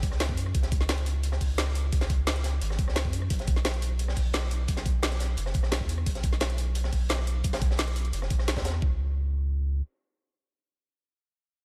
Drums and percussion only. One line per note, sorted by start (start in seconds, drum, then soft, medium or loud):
0.03 kick loud
0.03 closed hi-hat medium
0.11 cross-stick soft
0.11 snare soft
0.20 snare loud
0.20 closed hi-hat loud
0.20 closed hi-hat medium
0.29 kick medium
0.37 closed hi-hat medium
0.37 open hi-hat medium
0.46 cross-stick soft
0.55 kick loud
0.55 closed hi-hat medium
0.63 snare soft
0.63 closed hi-hat soft
0.72 kick loud
0.72 closed hi-hat medium
0.81 snare soft
0.89 snare loud
0.89 closed hi-hat medium
0.98 closed hi-hat soft
1.06 closed hi-hat medium
1.06 open hi-hat medium
1.23 closed hi-hat medium
1.32 cross-stick soft
1.32 snare medium
1.41 kick medium
1.41 closed hi-hat medium
1.41 open hi-hat medium
1.58 snare loud
1.58 closed hi-hat medium
1.67 cross-stick soft
1.75 closed hi-hat medium
1.75 open hi-hat medium
1.93 kick loud
1.93 closed hi-hat medium
2.01 snare medium
2.01 snare soft
2.01 closed hi-hat soft
2.10 kick loud
2.10 closed hi-hat medium
2.27 snare loud
2.27 closed hi-hat medium
2.36 snare soft
2.36 closed hi-hat soft
2.44 snare medium
2.44 closed hi-hat medium
2.44 open hi-hat medium
2.62 closed hi-hat medium
2.70 cross-stick soft
2.70 snare soft
2.79 kick loud
2.79 closed hi-hat medium
2.88 cross-stick soft
2.88 snare soft
2.96 snare loud
2.96 closed hi-hat medium
3.05 kick medium
3.13 closed hi-hat medium
3.13 open hi-hat medium
3.22 cross-stick soft
3.30 kick loud
3.30 closed hi-hat medium
3.30 closed hi-hat loud
3.39 snare soft
3.39 closed hi-hat soft
3.48 kick loud
3.48 closed hi-hat medium
3.56 snare soft
3.65 snare loud
3.65 closed hi-hat medium
3.74 closed hi-hat soft
3.82 closed hi-hat medium
3.82 open hi-hat medium
3.99 closed hi-hat medium
4.08 cross-stick soft
4.08 snare medium
4.16 kick medium
4.16 closed hi-hat medium
4.16 open hi-hat medium
4.33 snare loud
4.33 closed hi-hat loud
4.33 closed hi-hat medium
4.43 cross-stick soft
4.51 closed hi-hat medium
4.51 open hi-hat medium
4.68 kick loud
4.68 closed hi-hat medium
4.77 snare medium
4.77 snare soft
4.77 closed hi-hat soft
4.86 kick loud
4.86 closed hi-hat medium
5.03 snare loud
5.03 closed hi-hat loud
5.03 closed hi-hat medium
5.11 snare soft
5.11 closed hi-hat soft
5.20 snare medium
5.20 closed hi-hat medium
5.20 open hi-hat medium
5.37 closed hi-hat medium
5.46 cross-stick soft
5.46 snare soft
5.54 kick loud
5.54 closed hi-hat medium
5.63 cross-stick soft
5.63 snare soft
5.72 snare loud
5.72 closed hi-hat loud
5.72 closed hi-hat medium
5.81 kick medium
5.89 closed hi-hat medium
5.89 open hi-hat medium
5.98 cross-stick soft
6.06 kick loud
6.06 closed hi-hat loud
6.06 closed hi-hat medium
6.15 snare soft
6.15 closed hi-hat soft
6.23 kick loud
6.23 closed hi-hat medium
6.33 snare soft
6.40 snare loud
6.40 closed hi-hat medium
6.40 closed hi-hat loud
6.50 closed hi-hat soft
6.58 closed hi-hat medium
6.58 open hi-hat medium
6.75 closed hi-hat loud
6.75 closed hi-hat medium
6.84 cross-stick soft
6.84 snare medium
6.93 kick medium
6.93 closed hi-hat medium
6.93 open hi-hat medium
7.09 snare loud
7.09 closed hi-hat medium
7.09 closed hi-hat loud
7.19 cross-stick soft
7.27 open hi-hat medium
7.44 kick loud
7.44 closed hi-hat medium
7.44 closed hi-hat loud
7.53 snare soft
7.53 snare loud
7.53 closed hi-hat soft
7.53 closed hi-hat medium
7.61 kick loud
7.61 closed hi-hat medium
7.71 snare soft
7.77 snare loud
7.77 closed hi-hat loud
7.77 open hi-hat medium
7.88 cross-stick soft
7.88 closed hi-hat soft
7.96 closed hi-hat medium
7.96 open hi-hat medium
8.05 closed hi-hat soft
8.13 closed hi-hat loud
8.13 closed hi-hat medium
8.22 cross-stick soft
8.22 snare soft
8.30 kick loud
8.30 closed hi-hat medium
8.39 cross-stick soft
8.39 snare soft
8.48 snare loud
8.48 closed hi-hat medium
8.48 closed hi-hat loud
8.56 kick medium
8.56 snare loud
8.56 closed hi-hat medium
8.64 snare loud
8.64 closed hi-hat medium
8.64 open hi-hat medium
8.74 cross-stick soft
8.82 kick loud